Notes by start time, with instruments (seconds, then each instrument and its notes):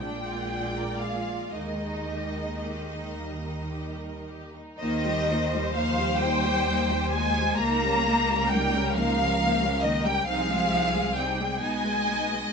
Already playing: viola section G#3
0.00 double bass section A#1, cello section A#2, violin section D4 D5 G5, viola section F4
0.25 violin section F4
0.50 violin section G#4
0.76 violin section A#4
1.00 violin section G#4 F5
1.28 violin section F4
1.53 double bass section D#2, cello section D#3, violin section A#3 D#5, viola section D#4
1.83 violin section D#4
2.08 violin section G4
2.36 violin section A#4
2.64 violin section G4
2.92 violin section D#4
3.18 viola section G3, violin section A#3
3.46 violin section D#4
3.73 violin section G4
3.99 violin section A#4
4.29 violin section G4
4.54 violin section D#4
4.79 double bass section D#2, cello section D#3, viola section A#3 D#4, violin section C5 D#5
5.06 viola section G3 G4
5.30 viola section A#3 D#4
5.53 viola section G3 G4
5.73 cello section F3, viola section A#3 D#4, violin section F5
5.98 viola section G3 G4
6.19 cello section G3, viola section A#3 D#4, violin section G5
6.45 viola section G3 G4
6.67 viola section A#3 D#4
6.90 viola section G3 G4
7.11 cello section G#3, violin section G#5
7.15 viola section A#3 D#4
7.37 viola section G3 G4
7.58 double bass section C#2, cello section A#3, viola section A#3 D#4, violin section A#4 A#5
7.85 viola section G3 C#4
8.08 viola section A#3 D#4
8.30 viola section G3 C#4
8.49 cello section G3, viola section A#3 D#4, violin section G5
8.75 viola section G3 C#4
8.94 cello section F3, viola section A#3 D#4, violin section F5
9.20 viola section G3 C#4
9.41 viola section A#3 D#4
9.62 viola section G3 C#4
9.82 cello section D#3, viola section A#3 D#4, violin section D#5
10.05 cello section G3, viola section G3 C#4, violin section G5
10.25 double bass section C2, cello section F3, viola section C4 D#4, violin section G#4 F5
10.50 viola section G#3 C4
10.72 viola section C4 D#4
10.94 viola section G#3 C4
11.16 cello section G3, viola section C4 D#4, violin section G5
11.40 viola section G#3 C4
11.61 double bass section B1, cello section G#3, viola section B3 D#4, violin section D#5 G#5
11.84 viola section G#3 B3
12.08 viola section B3 D#4
12.31 viola section G#3 B3